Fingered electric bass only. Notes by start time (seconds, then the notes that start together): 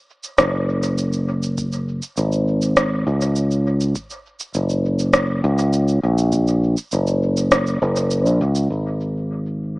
0.39 F#1
2.18 G#1
3.07 C#2
4.55 F#1
5.44 C#2
6.03 A#1
6.93 F#1
7.82 F#1
8.26 A#1
8.41 C#2
8.70 G#1